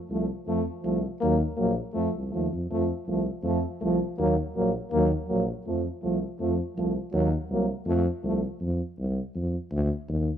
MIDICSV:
0, 0, Header, 1, 4, 480
1, 0, Start_track
1, 0, Tempo, 369686
1, 615, Time_signature, 2, 2, 24, 8
1, 13476, End_track
2, 0, Start_track
2, 0, Title_t, "French horn"
2, 0, Program_c, 0, 60
2, 145, Note_on_c, 0, 57, 62
2, 336, Note_off_c, 0, 57, 0
2, 617, Note_on_c, 0, 57, 77
2, 810, Note_off_c, 0, 57, 0
2, 1096, Note_on_c, 0, 57, 65
2, 1290, Note_off_c, 0, 57, 0
2, 1566, Note_on_c, 0, 58, 84
2, 1763, Note_off_c, 0, 58, 0
2, 2039, Note_on_c, 0, 58, 74
2, 2238, Note_off_c, 0, 58, 0
2, 2514, Note_on_c, 0, 57, 81
2, 2714, Note_off_c, 0, 57, 0
2, 3010, Note_on_c, 0, 57, 58
2, 3207, Note_off_c, 0, 57, 0
2, 3517, Note_on_c, 0, 57, 68
2, 3709, Note_off_c, 0, 57, 0
2, 4011, Note_on_c, 0, 57, 59
2, 4200, Note_off_c, 0, 57, 0
2, 4468, Note_on_c, 0, 57, 78
2, 4662, Note_off_c, 0, 57, 0
2, 4949, Note_on_c, 0, 57, 73
2, 5143, Note_off_c, 0, 57, 0
2, 5435, Note_on_c, 0, 58, 85
2, 5628, Note_off_c, 0, 58, 0
2, 5918, Note_on_c, 0, 58, 74
2, 6110, Note_off_c, 0, 58, 0
2, 6373, Note_on_c, 0, 58, 85
2, 6571, Note_off_c, 0, 58, 0
2, 6870, Note_on_c, 0, 58, 61
2, 7064, Note_off_c, 0, 58, 0
2, 7341, Note_on_c, 0, 57, 64
2, 7536, Note_off_c, 0, 57, 0
2, 7831, Note_on_c, 0, 57, 69
2, 8024, Note_off_c, 0, 57, 0
2, 8305, Note_on_c, 0, 57, 85
2, 8499, Note_off_c, 0, 57, 0
2, 8805, Note_on_c, 0, 57, 77
2, 8995, Note_off_c, 0, 57, 0
2, 9291, Note_on_c, 0, 58, 80
2, 9479, Note_off_c, 0, 58, 0
2, 9761, Note_on_c, 0, 58, 74
2, 9951, Note_off_c, 0, 58, 0
2, 10215, Note_on_c, 0, 57, 81
2, 10409, Note_off_c, 0, 57, 0
2, 10698, Note_on_c, 0, 57, 74
2, 10891, Note_off_c, 0, 57, 0
2, 13476, End_track
3, 0, Start_track
3, 0, Title_t, "Euphonium"
3, 0, Program_c, 1, 58
3, 139, Note_on_c, 1, 53, 59
3, 331, Note_off_c, 1, 53, 0
3, 608, Note_on_c, 1, 53, 80
3, 803, Note_off_c, 1, 53, 0
3, 1079, Note_on_c, 1, 53, 67
3, 1277, Note_off_c, 1, 53, 0
3, 1586, Note_on_c, 1, 54, 73
3, 1778, Note_off_c, 1, 54, 0
3, 2038, Note_on_c, 1, 54, 71
3, 2237, Note_off_c, 1, 54, 0
3, 2524, Note_on_c, 1, 53, 73
3, 2722, Note_off_c, 1, 53, 0
3, 3027, Note_on_c, 1, 53, 62
3, 3221, Note_off_c, 1, 53, 0
3, 3526, Note_on_c, 1, 53, 69
3, 3716, Note_off_c, 1, 53, 0
3, 3993, Note_on_c, 1, 53, 60
3, 4186, Note_off_c, 1, 53, 0
3, 4467, Note_on_c, 1, 53, 74
3, 4662, Note_off_c, 1, 53, 0
3, 4985, Note_on_c, 1, 53, 74
3, 5172, Note_off_c, 1, 53, 0
3, 5448, Note_on_c, 1, 54, 77
3, 5639, Note_off_c, 1, 54, 0
3, 5927, Note_on_c, 1, 54, 68
3, 6117, Note_off_c, 1, 54, 0
3, 6432, Note_on_c, 1, 54, 76
3, 6617, Note_off_c, 1, 54, 0
3, 6867, Note_on_c, 1, 54, 69
3, 7062, Note_off_c, 1, 54, 0
3, 7361, Note_on_c, 1, 53, 57
3, 7553, Note_off_c, 1, 53, 0
3, 7833, Note_on_c, 1, 53, 65
3, 8026, Note_off_c, 1, 53, 0
3, 8311, Note_on_c, 1, 53, 70
3, 8504, Note_off_c, 1, 53, 0
3, 8784, Note_on_c, 1, 53, 70
3, 8978, Note_off_c, 1, 53, 0
3, 9257, Note_on_c, 1, 54, 84
3, 9452, Note_off_c, 1, 54, 0
3, 9761, Note_on_c, 1, 54, 76
3, 9951, Note_off_c, 1, 54, 0
3, 10228, Note_on_c, 1, 53, 74
3, 10420, Note_off_c, 1, 53, 0
3, 10711, Note_on_c, 1, 53, 59
3, 10902, Note_off_c, 1, 53, 0
3, 13476, End_track
4, 0, Start_track
4, 0, Title_t, "Tuba"
4, 0, Program_c, 2, 58
4, 126, Note_on_c, 2, 36, 77
4, 394, Note_off_c, 2, 36, 0
4, 611, Note_on_c, 2, 41, 88
4, 878, Note_off_c, 2, 41, 0
4, 1097, Note_on_c, 2, 36, 78
4, 1363, Note_off_c, 2, 36, 0
4, 1599, Note_on_c, 2, 39, 101
4, 1860, Note_off_c, 2, 39, 0
4, 2050, Note_on_c, 2, 34, 86
4, 2320, Note_off_c, 2, 34, 0
4, 2535, Note_on_c, 2, 41, 90
4, 2672, Note_off_c, 2, 41, 0
4, 2803, Note_on_c, 2, 36, 69
4, 3014, Note_off_c, 2, 36, 0
4, 3044, Note_on_c, 2, 39, 73
4, 3255, Note_off_c, 2, 39, 0
4, 3275, Note_on_c, 2, 41, 78
4, 3491, Note_off_c, 2, 41, 0
4, 3516, Note_on_c, 2, 41, 96
4, 3780, Note_off_c, 2, 41, 0
4, 3992, Note_on_c, 2, 36, 77
4, 4257, Note_off_c, 2, 36, 0
4, 4456, Note_on_c, 2, 41, 101
4, 4726, Note_off_c, 2, 41, 0
4, 4949, Note_on_c, 2, 36, 77
4, 5216, Note_off_c, 2, 36, 0
4, 5434, Note_on_c, 2, 39, 105
4, 5699, Note_off_c, 2, 39, 0
4, 5921, Note_on_c, 2, 34, 82
4, 6185, Note_off_c, 2, 34, 0
4, 6391, Note_on_c, 2, 39, 110
4, 6657, Note_off_c, 2, 39, 0
4, 6885, Note_on_c, 2, 34, 85
4, 7147, Note_off_c, 2, 34, 0
4, 7363, Note_on_c, 2, 41, 95
4, 7625, Note_off_c, 2, 41, 0
4, 7841, Note_on_c, 2, 36, 75
4, 8104, Note_off_c, 2, 36, 0
4, 8308, Note_on_c, 2, 41, 99
4, 8574, Note_off_c, 2, 41, 0
4, 8792, Note_on_c, 2, 36, 81
4, 9057, Note_off_c, 2, 36, 0
4, 9255, Note_on_c, 2, 39, 113
4, 9524, Note_off_c, 2, 39, 0
4, 9739, Note_on_c, 2, 36, 82
4, 10006, Note_off_c, 2, 36, 0
4, 10207, Note_on_c, 2, 41, 114
4, 10477, Note_off_c, 2, 41, 0
4, 10698, Note_on_c, 2, 36, 89
4, 10964, Note_off_c, 2, 36, 0
4, 11174, Note_on_c, 2, 41, 99
4, 11440, Note_off_c, 2, 41, 0
4, 11666, Note_on_c, 2, 36, 84
4, 11928, Note_off_c, 2, 36, 0
4, 12145, Note_on_c, 2, 41, 90
4, 12406, Note_off_c, 2, 41, 0
4, 12610, Note_on_c, 2, 38, 108
4, 12875, Note_off_c, 2, 38, 0
4, 13096, Note_on_c, 2, 39, 95
4, 13358, Note_off_c, 2, 39, 0
4, 13476, End_track
0, 0, End_of_file